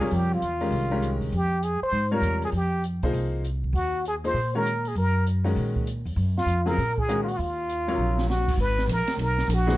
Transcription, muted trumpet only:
0.00 0.16 G#4 medium
0.15 0.32 G4 medium
0.34 1.19 F4 medium
1.36 1.65 G4 medium
1.64 1.82 G#4 medium
1.83 2.11 C5 medium
2.14 2.41 A#4 medium
2.45 2.49 G#4 medium
2.57 2.84 G4 medium
3.75 4.03 F#4 medium
4.08 4.16 G#4 medium
4.26 4.53 C5 medium
4.56 4.89 A#4 medium
4.88 4.97 G#4 medium
4.98 5.25 A#4 medium
6.37 6.68 F4 medium
6.67 7.00 A#4 medium
6.99 7.23 G#4 medium
7.24 7.30 F4 soft
7.28 7.39 F#4 medium
7.37 8.28 F4 medium
8.29 8.57 F#4 medium
8.60 8.88 B4 medium
8.92 9.19 A#4 medium
9.22 9.55 A#4 medium
9.54 9.77 F#4 medium

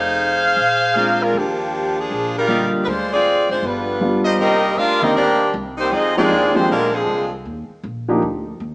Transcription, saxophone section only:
0.00 0.58 D#4 medium
0.00 1.21 G#4 medium
0.00 1.20 C5 medium
0.00 1.20 F5 loud
1.22 1.35 G#3 medium
1.22 1.35 D4 medium
1.22 1.35 F4 medium
1.22 1.35 A#4 medium
1.38 1.98 F3 medium
1.38 1.98 A#3 medium
1.38 1.98 D4 medium
1.38 1.98 G4 medium
1.99 2.36 F3 medium
1.99 2.36 A#3 medium
1.99 2.36 D4 medium
1.99 2.36 G#4 medium
2.37 2.72 G3 medium
2.37 2.72 D4 medium
2.37 2.72 F4 medium
2.37 2.72 A#4 loud
2.84 3.11 F4 medium
2.84 2.87 B4 medium
2.84 3.11 C5 medium
2.88 3.12 G#3 medium
2.88 3.12 D4 medium
3.13 3.48 C4 medium
3.13 3.47 F4 medium
3.13 3.47 G#4 medium
3.13 3.48 D5 medium
3.51 3.63 G#3 medium
3.51 3.63 D4 medium
3.51 3.64 F4 medium
3.51 3.63 C5 medium
3.66 4.27 G3 medium
3.66 4.27 D4 medium
3.66 4.27 F4 medium
3.66 4.27 B4 medium
4.40 4.75 C4 medium
4.40 4.75 G4 medium
4.40 4.75 A#4 medium
4.40 4.75 D#5 loud
4.78 5.02 D4 medium
4.78 5.02 G4 medium
4.78 5.02 A#4 medium
4.78 5.03 F5 loud
5.03 5.15 C4 medium
5.03 5.15 G4 medium
5.03 5.15 A#4 medium
5.03 5.17 D#5 loud
5.16 5.52 C4 medium
5.16 5.52 G4 medium
5.16 5.52 A#4 medium
5.16 5.52 D5 medium
5.78 5.91 A#3 medium
5.78 5.91 D#4 medium
5.78 5.92 G4 medium
5.78 5.92 C5 medium
5.91 6.16 C4 medium
5.91 6.15 F4 medium
5.91 6.16 G#4 medium
5.91 6.17 D#5 medium
6.17 6.52 C4 medium
6.17 6.52 F4 medium
6.17 6.52 G#4 medium
6.17 6.52 D5 loud
6.54 6.69 G#3 medium
6.54 6.69 D#4 medium
6.54 6.69 F4 medium
6.54 6.69 C5 medium
6.71 6.93 G#3 medium
6.71 6.93 D4 medium
6.71 6.93 F4 medium
6.71 6.93 A#4 medium
6.94 7.32 F3 medium
6.94 7.32 C4 medium
6.94 7.32 D4 medium
6.94 7.32 G#4 medium

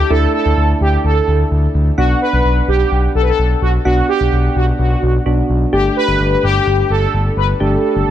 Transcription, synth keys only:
0.10 1.94 A3 medium
0.10 1.94 D4 medium
0.10 1.94 E4 medium
1.98 3.82 B3 medium
1.98 3.82 D4 medium
1.98 3.82 F#5 medium
3.85 5.23 B3 medium
3.85 5.23 D4 medium
3.85 5.23 F#5 medium
5.26 5.73 B3 soft
5.26 5.72 D4 soft
5.26 5.73 F#4 medium
5.73 7.56 A3 medium
5.73 7.57 D4 medium
5.73 7.57 G4 medium
7.60 8.11 A3 medium
7.60 8.11 D4 medium
7.60 8.11 G4 medium

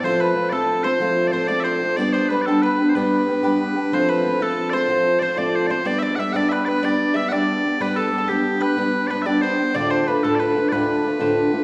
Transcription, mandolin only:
0.05 0.19 C5 medium
0.20 0.50 B4 medium
0.52 0.82 A4 medium
0.84 1.30 C5 medium
1.33 1.48 C5 medium
1.48 1.64 D5 medium
1.65 1.95 C5 medium
1.97 2.12 D5 medium
2.14 2.29 C5 medium
2.30 2.47 B4 medium
2.48 2.63 A4 medium
2.63 2.86 B4 medium
2.95 3.43 B4 medium
3.44 3.59 B4 medium
3.93 4.08 C5 medium
4.09 4.39 B4 medium
4.42 4.71 A4 medium
4.73 5.21 C5 medium
5.22 5.37 C5 medium
5.37 5.68 D5 medium
5.70 5.85 C5 medium
5.85 6.01 D5 medium
6.02 6.17 D5 medium
6.20 6.34 E5 medium
6.36 6.51 D5 loud
6.51 6.65 B4 medium
6.66 6.82 B4 medium
6.83 7.13 D5 medium
7.14 7.32 E5 medium
7.32 7.77 D5 medium
7.81 7.96 B4 medium
7.96 8.06 A4 medium
8.08 8.17 A4 medium
8.18 8.28 A4 medium
8.28 8.58 G4 medium
8.60 9.09 B4 medium
9.10 9.25 B4 medium
9.26 9.41 D5 medium
9.43 9.73 C5 medium
9.74 9.90 D5 medium
9.90 10.07 C5 medium
10.08 10.24 B4 medium
10.24 10.39 A4 medium
10.40 10.70 B4 medium
10.72 11.20 B4 medium
11.21 11.35 C5 medium

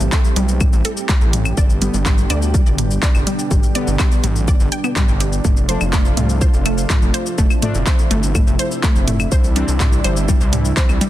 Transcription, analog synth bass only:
0.00 0.10 A1 medium
0.36 0.69 B1 loud
0.73 0.82 A1 medium
1.21 1.53 A1 medium
1.57 1.90 G1 loud
1.94 2.26 G1 loud
2.30 2.62 D2 medium
2.66 2.98 G1 medium
3.15 3.24 G1 medium
3.51 3.61 G1 medium
3.87 3.97 G1 medium
4.24 4.56 A1 loud
4.60 4.69 G1 loud
5.08 5.41 G1 medium
5.45 5.77 F1 medium
5.81 6.13 F1 loud
6.17 6.49 C2 medium
6.54 6.86 F1 medium
7.02 7.11 F1 medium
7.38 7.48 F1 medium
7.75 7.84 F1 medium
8.11 8.43 G1 loud
8.47 8.57 F1 medium
8.96 9.28 F1 medium
9.32 9.64 C2 medium
9.68 10.00 C2 loud
10.04 10.36 G1 medium
10.41 10.73 C2 medium
10.89 10.99 C2 medium

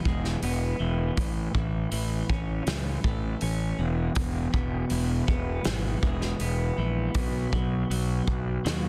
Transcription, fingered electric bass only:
0.05 0.35 E1 medium
0.43 0.72 E1 medium
0.80 1.10 E1 medium
1.18 1.47 A1 medium
1.55 1.84 A1 medium
1.92 2.22 A1 medium
2.29 2.59 A1 medium
2.67 2.96 C#2 medium
3.04 3.34 A1 medium
3.42 3.72 A1 medium
3.79 4.09 E1 medium
4.17 4.46 E1 medium
4.54 4.83 E1 medium
4.91 5.21 E1 medium
5.28 5.58 E1 medium
5.65 5.95 G#1 medium
6.03 6.33 E1 medium
6.40 6.70 E1 medium
6.78 7.08 A#1 medium
7.15 7.45 B1 medium
7.53 7.83 B1 medium
7.90 8.20 B1 medium
8.27 8.57 B1 medium
8.65 8.89 D#2 medium

